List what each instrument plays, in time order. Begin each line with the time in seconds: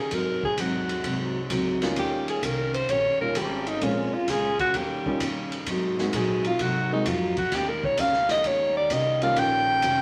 Already playing: saxophone section G3 D#4
0.00 alto saxophone G#4
0.11 steel-string acoustic guitar G#2 F#3 C4 D#4, upright bass G#2, saxophone section C3 F#3 G#3, alto saxophone A#4, kick, ride
0.43 alto saxophone G#4, kick
0.58 upright bass D#2, steel-string acoustic guitar G#2 F#3 C4 D#4, alto saxophone F#4, kick, hi-hat pedal, ride
0.89 ride
1.03 upright bass C2, steel-string acoustic guitar G#2 F#3 C4 D#4, kick, ride
1.50 upright bass C#2, steel-string acoustic guitar G#2 F#3 C4 D#4, kick, hi-hat pedal, ride
1.82 grand piano G3 A#3 C#4 D#4 F4, snare, ride
1.96 upright bass D#2, steel-string acoustic guitar D#3 A#3 C#4 G4, saxophone section G3 A#3 C#4, alto saxophone G4, kick, ride
2.28 alto saxophone G#4, ride
2.43 upright bass C2, steel-string acoustic guitar D#3 A#3 C#4 G4, alto saxophone A#4, kick, hi-hat pedal, ride
2.74 alto saxophone C5, ride
2.89 upright bass A#1, steel-string acoustic guitar D#3 A#3 C#4 G4, alto saxophone C#5, kick, ride
3.04 upright bass G1
3.19 upright bass D#1, grand piano G3 A#3 C#4 D#4 F4, alto saxophone A#4
3.35 upright bass G#1, steel-string acoustic guitar D#3 A#3 C#4 G4, alto saxophone G4, kick, hi-hat pedal, ride
3.67 alto saxophone D#4, ride
3.81 upright bass A#1, steel-string acoustic guitar A#2 G#3 C#4 F4, grand piano G#3 A#3 C4 C#4 F4, saxophone section G#3 F4, alto saxophone C#4, kick, ride
4.14 alto saxophone F4
4.28 upright bass C#2, steel-string acoustic guitar A#2 G#3 C#4 F4, alto saxophone G#4, kick, snare, hi-hat pedal, ride
4.59 alto saxophone F#4, kick, ride
4.74 upright bass D#2, steel-string acoustic guitar D#3 A#3 C#4, saxophone section G3 D#4, alto saxophone G4, kick, ride
4.78 steel-string acoustic guitar G4
5.06 grand piano G3 A#3 C#4 D#4 F4, kick
5.20 upright bass G2, steel-string acoustic guitar D#3 A#3 C#4 G4, kick, hi-hat pedal, ride
5.52 ride
5.66 upright bass G#2, steel-string acoustic guitar G#2 F#3 C4, saxophone section C3 G#3 F#4, kick, ride
5.70 steel-string acoustic guitar D#4
5.99 grand piano G#3 A#3 C4 D#4 F#4, snare
6.13 steel-string acoustic guitar G#2 F#3 C4 D#4, upright bass A#2, alto saxophone G#4, kick, hi-hat pedal, ride
6.44 alto saxophone F4, ride
6.59 steel-string acoustic guitar G#2 F#3 C4 D#4, upright bass C3, alto saxophone F#4, kick, ride
6.92 grand piano G#3 A#3 C4 D#4 F#4, alto saxophone D#4
7.06 upright bass F2, steel-string acoustic guitar G#2 F#3 C4 D#4, alto saxophone F4, kick, hi-hat pedal, ride
7.37 alto saxophone F#4, kick, ride
7.52 upright bass D#2, steel-string acoustic guitar D#3 A#3 C#4 G4, saxophone section D#3 G3 A#3 D#4, alto saxophone G4, kick, snare, ride
7.69 alto saxophone A#4
7.84 alto saxophone C#5, kick
7.97 upright bass C#2, steel-string acoustic guitar D#3 A#3 C#4 G4, alto saxophone F5, kick, hi-hat pedal, ride
8.13 snare
8.29 alto saxophone D#5, snare, ride
8.44 upright bass D#2, steel-string acoustic guitar D#3 A#3 C#4 G4, alto saxophone C#5, kick, ride
8.77 alto saxophone D5
8.90 upright bass C2, steel-string acoustic guitar D#3 A#3 C#4 G4, alto saxophone D#5, kick, hi-hat pedal, ride
9.22 grand piano G3 A#3 C#4 D#4 F4, alto saxophone F5, ride
9.36 upright bass A#1, steel-string acoustic guitar D#3 A#3 C#4 G4, saxophone section C#4, alto saxophone G5, kick, ride
9.82 upright bass F1, steel-string acoustic guitar D#3 A#3 C#4 G4, kick, hi-hat pedal, ride